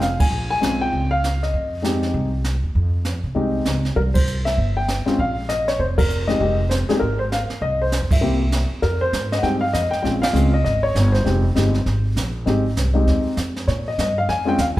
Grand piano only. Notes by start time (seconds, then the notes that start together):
0.02 F5
0.20 G#5
0.50 G#5
0.61 G#3 C4 C#4 F4
0.81 G5
1.11 F5
1.43 D#5
1.82 G#3 C4 D#4 G4
3.35 G#3 C4 D#4 G4
3.96 A#4
4.14 C5
4.45 E5
4.77 G5
5.06 G#3 C4 C#4 F4
5.20 F5
5.49 D#5
5.68 C#5
5.79 C5
5.98 A#4
6.27 G#3 C4 D#4 G4 D#5
6.40 G#3 C4 D#4 G4
6.69 C5
6.89 G#3 C4 D#4 G4 G#4
7.00 A#4
7.19 C5
7.32 F5
7.62 D#5
7.82 C5
8.12 E5
8.21 A#3 C4 E4 G4
8.82 A#4
9.01 C5
9.32 D#5
9.38 G#3 F#5
9.43 C4 D#4 G4 G5
9.61 F5
9.73 D#5
9.91 G5
10.02 G#3 C4 C#4 F4 G5
10.22 F5
10.33 G#3 C4 C#4 F4
10.54 D#5
10.64 D#5
10.83 C#5
11.12 C5
11.24 G#3 C4 D#4 G4
11.55 G#3 C4 D#4 G4
12.46 G#3 C4 D#4 G4
12.94 G#3 C4 D#4 G4
13.68 C#5
13.88 D#5
14.00 D#5
14.18 F5
14.29 G#5
14.45 G#3 C4 C#4 F4 G5
14.60 F5